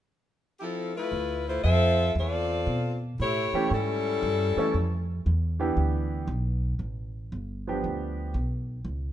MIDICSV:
0, 0, Header, 1, 5, 480
1, 0, Start_track
1, 0, Tempo, 515464
1, 1057, Time_signature, 4, 2, 24, 8
1, 8497, End_track
2, 0, Start_track
2, 0, Title_t, "Saxophone section"
2, 0, Program_c, 0, 65
2, 548, Note_on_c, 0, 67, 49
2, 574, Note_on_c, 0, 64, 57
2, 578, Note_on_c, 0, 69, 65
2, 579, Note_on_c, 0, 53, 54
2, 579, Note_on_c, 0, 60, 54
2, 582, Note_off_c, 0, 67, 0
2, 889, Note_off_c, 0, 64, 0
2, 890, Note_on_c, 0, 71, 75
2, 894, Note_on_c, 0, 57, 67
2, 897, Note_on_c, 0, 65, 62
2, 898, Note_off_c, 0, 53, 0
2, 898, Note_off_c, 0, 60, 0
2, 898, Note_off_c, 0, 69, 0
2, 900, Note_on_c, 0, 64, 62
2, 1340, Note_off_c, 0, 71, 0
2, 1342, Note_off_c, 0, 57, 0
2, 1344, Note_off_c, 0, 65, 0
2, 1345, Note_off_c, 0, 64, 0
2, 1381, Note_on_c, 0, 72, 66
2, 1382, Note_on_c, 0, 65, 62
2, 1383, Note_on_c, 0, 64, 63
2, 1386, Note_on_c, 0, 57, 63
2, 1514, Note_off_c, 0, 65, 0
2, 1525, Note_on_c, 0, 65, 71
2, 1527, Note_on_c, 0, 76, 86
2, 1530, Note_on_c, 0, 60, 79
2, 1534, Note_on_c, 0, 69, 76
2, 1539, Note_off_c, 0, 72, 0
2, 1540, Note_off_c, 0, 64, 0
2, 1542, Note_off_c, 0, 57, 0
2, 1978, Note_off_c, 0, 65, 0
2, 1979, Note_off_c, 0, 76, 0
2, 1980, Note_off_c, 0, 60, 0
2, 1982, Note_off_c, 0, 69, 0
2, 2040, Note_on_c, 0, 65, 64
2, 2041, Note_on_c, 0, 74, 76
2, 2042, Note_on_c, 0, 69, 63
2, 2046, Note_on_c, 0, 60, 63
2, 2793, Note_off_c, 0, 65, 0
2, 2793, Note_off_c, 0, 69, 0
2, 2793, Note_off_c, 0, 74, 0
2, 2796, Note_off_c, 0, 60, 0
2, 2985, Note_on_c, 0, 57, 64
2, 2986, Note_on_c, 0, 64, 63
2, 2987, Note_on_c, 0, 67, 72
2, 2992, Note_on_c, 0, 73, 88
2, 3429, Note_off_c, 0, 57, 0
2, 3429, Note_off_c, 0, 64, 0
2, 3430, Note_off_c, 0, 67, 0
2, 3433, Note_off_c, 0, 73, 0
2, 3478, Note_on_c, 0, 61, 70
2, 3480, Note_on_c, 0, 64, 68
2, 3480, Note_on_c, 0, 69, 88
2, 3481, Note_on_c, 0, 55, 71
2, 4712, Note_off_c, 0, 61, 0
2, 4713, Note_off_c, 0, 64, 0
2, 4713, Note_off_c, 0, 69, 0
2, 4714, Note_off_c, 0, 55, 0
2, 8497, End_track
3, 0, Start_track
3, 0, Title_t, "Grand piano"
3, 0, Program_c, 1, 0
3, 3294, Note_on_c, 1, 52, 45
3, 3302, Note_on_c, 1, 57, 48
3, 3304, Note_on_c, 1, 67, 55
3, 3307, Note_on_c, 1, 61, 49
3, 3441, Note_off_c, 1, 52, 0
3, 3445, Note_off_c, 1, 57, 0
3, 3445, Note_off_c, 1, 67, 0
3, 3447, Note_off_c, 1, 61, 0
3, 4261, Note_on_c, 1, 52, 52
3, 4261, Note_on_c, 1, 57, 55
3, 4266, Note_on_c, 1, 61, 48
3, 4269, Note_on_c, 1, 64, 61
3, 4404, Note_off_c, 1, 52, 0
3, 4404, Note_off_c, 1, 57, 0
3, 4407, Note_off_c, 1, 61, 0
3, 4409, Note_off_c, 1, 64, 0
3, 5211, Note_on_c, 1, 52, 55
3, 5216, Note_on_c, 1, 59, 51
3, 5220, Note_on_c, 1, 67, 58
3, 5221, Note_on_c, 1, 62, 51
3, 5823, Note_off_c, 1, 52, 0
3, 5826, Note_off_c, 1, 59, 0
3, 5828, Note_off_c, 1, 67, 0
3, 5829, Note_off_c, 1, 62, 0
3, 7146, Note_on_c, 1, 53, 46
3, 7147, Note_on_c, 1, 59, 43
3, 7159, Note_on_c, 1, 62, 43
3, 7161, Note_on_c, 1, 67, 55
3, 7748, Note_off_c, 1, 53, 0
3, 7748, Note_off_c, 1, 59, 0
3, 7754, Note_off_c, 1, 62, 0
3, 7756, Note_off_c, 1, 67, 0
3, 8497, End_track
4, 0, Start_track
4, 0, Title_t, "Upright bass"
4, 0, Program_c, 2, 32
4, 1039, Note_on_c, 2, 38, 65
4, 1514, Note_off_c, 2, 38, 0
4, 1527, Note_on_c, 2, 41, 71
4, 1998, Note_off_c, 2, 41, 0
4, 2005, Note_on_c, 2, 40, 74
4, 2477, Note_off_c, 2, 40, 0
4, 2483, Note_on_c, 2, 47, 74
4, 2957, Note_off_c, 2, 47, 0
4, 2976, Note_on_c, 2, 45, 70
4, 3275, Note_off_c, 2, 45, 0
4, 3452, Note_on_c, 2, 44, 62
4, 3922, Note_off_c, 2, 44, 0
4, 3934, Note_on_c, 2, 43, 84
4, 4234, Note_off_c, 2, 43, 0
4, 4414, Note_on_c, 2, 41, 68
4, 4883, Note_off_c, 2, 41, 0
4, 4898, Note_on_c, 2, 40, 74
4, 5365, Note_off_c, 2, 40, 0
4, 5369, Note_on_c, 2, 38, 68
4, 5837, Note_off_c, 2, 38, 0
4, 5843, Note_on_c, 2, 35, 82
4, 6316, Note_off_c, 2, 35, 0
4, 6323, Note_on_c, 2, 33, 69
4, 6796, Note_off_c, 2, 33, 0
4, 6817, Note_on_c, 2, 31, 71
4, 7283, Note_off_c, 2, 31, 0
4, 7300, Note_on_c, 2, 38, 67
4, 7762, Note_off_c, 2, 38, 0
4, 7768, Note_on_c, 2, 35, 74
4, 8231, Note_off_c, 2, 35, 0
4, 8237, Note_on_c, 2, 37, 75
4, 8497, Note_off_c, 2, 37, 0
4, 8497, End_track
5, 0, Start_track
5, 0, Title_t, "Muted upright bass strokes"
5, 3288, Note_on_c, 9, 29, 30
5, 3381, Note_off_c, 9, 29, 0
5, 4252, Note_on_c, 9, 29, 37
5, 4345, Note_off_c, 9, 29, 0
5, 8497, End_track
0, 0, End_of_file